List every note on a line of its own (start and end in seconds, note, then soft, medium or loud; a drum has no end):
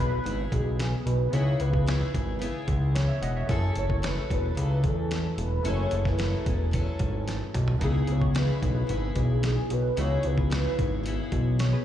0.00 0.20 B1 medium
0.00 0.23 C#3 medium
0.00 0.25 B3 medium
0.00 1.28 B3 medium
0.00 1.29 D#4 medium
0.00 0.27 E4 medium
0.00 1.30 E4 soft
0.00 0.26 G#4 medium
0.00 1.31 G#4 medium
0.00 0.55 B4 loud
0.00 closed hi-hat medium
0.24 0.47 G#1 loud
0.24 1.32 C#3 soft
0.24 1.32 B3 soft
0.24 1.34 E4 medium
0.24 closed hi-hat medium
0.29 1.34 G#4 medium
0.52 0.95 B1 medium
0.52 0.78 G#4 medium
0.52 kick medium
0.52 closed hi-hat medium
0.79 1.07 G#4 medium
0.79 snare medium
0.79 closed hi-hat medium
1.05 1.28 B1 medium
1.05 1.34 B4 medium
1.05 closed hi-hat medium
1.31 1.55 C#2 loud
1.31 1.85 C#3 medium
1.31 3.44 B3 medium
1.31 1.86 B3 medium
1.31 3.45 D#4 soft
1.31 3.46 E4 medium
1.31 1.88 E4 medium
1.31 1.60 C#5 loud
1.31 closed hi-hat medium
1.35 1.88 G#4 medium
1.35 3.46 G#4 medium
1.60 2.04 C#2 loud
1.60 2.38 B4 medium
1.60 closed hi-hat medium
1.74 kick medium
1.86 2.38 C#3 medium
1.86 2.40 B3 medium
1.86 2.43 E4 medium
1.86 2.42 G#4 medium
1.86 snare loud
1.86 closed hi-hat medium
2.14 2.47 G#1 medium
2.14 kick medium
2.14 closed hi-hat medium
2.39 3.48 C#3 medium
2.39 3.49 B3 medium
2.39 closed hi-hat medium
2.43 3.50 E4 medium
2.43 3.50 G#4 medium
2.68 3.11 C#2 medium
2.68 kick medium
2.68 closed hi-hat medium
2.95 3.08 C#5 medium
2.95 snare medium
2.95 closed hi-hat medium
3.09 3.22 C#5 medium
3.09 3.22 E5 medium
3.22 3.44 E1 medium
3.22 3.36 D#5 medium
3.22 3.35 F#5 medium
3.22 closed hi-hat medium
3.36 3.62 C#5 soft
3.36 3.62 E5 medium
3.47 3.71 F#1 loud
3.47 4.01 F#3 medium
3.47 5.60 A3 medium
3.47 5.61 C#4 soft
3.47 4.03 C#4 medium
3.47 4.03 E4 medium
3.47 5.62 E4 soft
3.47 4.03 A4 medium
3.47 kick loud
3.47 closed hi-hat medium
3.52 5.63 G#4 medium
3.52 3.76 A4 medium
3.76 4.19 F#1 medium
3.76 4.07 C#5 loud
3.76 closed hi-hat medium
3.90 kick medium
4.02 4.54 F#3 medium
4.02 4.57 C#4 medium
4.02 4.58 E4 medium
4.02 4.58 A4 medium
4.02 4.32 B4 loud
4.02 snare loud
4.02 closed hi-hat medium
4.30 4.52 E1 medium
4.30 4.82 B4 loud
4.30 kick medium
4.30 closed hi-hat medium
4.55 4.85 C#2 loud
4.55 5.63 F#3 medium
4.55 5.65 C#4 medium
4.55 closed hi-hat medium
4.59 5.65 E4 medium
4.59 5.65 A4 medium
4.84 5.27 E2 medium
4.84 kick medium
4.84 closed hi-hat medium
4.88 5.11 A4 medium
5.11 5.38 A4 medium
5.11 snare medium
5.11 closed hi-hat medium
5.38 5.60 E1 medium
5.38 5.71 B4 medium
5.38 closed hi-hat medium
5.63 5.87 F#1 loud
5.63 6.17 F#3 medium
5.63 7.76 A3 medium
5.63 7.77 C#4 soft
5.63 6.18 C#4 medium
5.63 6.19 E4 medium
5.63 7.78 E4 medium
5.63 6.19 A4 medium
5.63 closed hi-hat medium
5.68 7.79 G#4 medium
5.68 5.97 C#5 medium
5.91 6.36 F#1 medium
5.91 closed hi-hat medium
5.96 6.75 B4 medium
6.05 kick medium
6.05 snare soft
6.18 6.70 F#3 medium
6.18 6.73 C#4 medium
6.18 6.74 E4 medium
6.18 6.74 A4 medium
6.18 snare loud
6.18 closed hi-hat medium
6.46 6.90 E1 medium
6.46 kick medium
6.46 closed hi-hat medium
6.71 7.80 F#3 medium
6.71 7.82 C#4 medium
6.71 7.82 E4 medium
6.71 kick medium
6.71 closed hi-hat medium
6.77 7.83 A4 medium
6.99 7.43 G#1 medium
6.99 kick medium
6.99 closed hi-hat medium
7.28 snare soft
7.28 closed hi-hat medium
7.54 7.76 B1 medium
7.54 closed hi-hat medium
7.54 mid tom medium
7.68 floor tom medium
7.79 8.03 C#2 loud
7.79 8.33 C#3 medium
7.79 9.92 B3 medium
7.79 8.34 B3 medium
7.79 9.93 D#4 soft
7.79 9.94 E4 medium
7.79 8.35 E4 medium
7.79 kick loud
7.79 closed hi-hat medium
7.83 8.35 G#4 medium
7.83 9.95 G#4 medium
7.83 8.13 G#4 medium
8.07 8.52 C#2 medium
8.07 closed hi-hat medium
8.12 8.39 C#5 loud
8.22 kick medium
8.34 8.86 C#3 medium
8.34 8.88 B3 medium
8.34 8.90 E4 medium
8.34 8.90 G#4 medium
8.34 8.63 B4 loud
8.34 snare loud
8.34 closed hi-hat medium
8.63 8.84 B1 medium
8.63 9.20 B4 loud
8.63 kick medium
8.63 closed hi-hat medium
8.87 9.11 G#1 loud
8.87 9.95 C#3 medium
8.87 9.96 B3 medium
8.87 9.97 E4 medium
8.87 closed hi-hat medium
8.93 9.97 G#4 medium
9.16 9.59 B1 medium
9.16 9.44 G#4 medium
9.16 kick medium
9.16 closed hi-hat medium
9.43 9.74 G#4 medium
9.43 snare medium
9.43 closed hi-hat medium
9.70 9.92 B1 medium
9.70 10.01 B4 medium
9.70 closed hi-hat medium
9.96 10.19 C#2 loud
9.96 10.49 C#3 medium
9.96 11.85 B3 medium
9.96 10.50 B3 medium
9.96 11.56 D#4 soft
9.96 10.51 E4 medium
9.96 11.57 E4 soft
9.96 10.52 G#4 medium
9.96 10.28 C#5 loud
9.96 closed hi-hat medium
10.01 11.58 F#4 medium
10.23 10.68 C#2 medium
10.23 11.06 B4 medium
10.23 closed hi-hat medium
10.38 kick medium
10.50 11.02 C#3 medium
10.50 11.04 B3 medium
10.50 11.07 E4 medium
10.50 11.06 G#4 medium
10.50 snare loud
10.50 closed hi-hat medium
10.79 11.22 G#1 medium
10.79 kick medium
10.79 closed hi-hat medium
11.03 11.85 C#3 medium
11.03 11.85 B3 medium
11.03 11.85 E4 medium
11.03 closed hi-hat medium
11.09 11.85 G#4 medium
11.32 11.76 B1 medium
11.32 kick medium
11.32 closed hi-hat medium
11.59 11.73 C#5 medium
11.59 snare medium
11.59 closed hi-hat medium
11.73 11.85 G#4 medium
11.73 11.85 B4 medium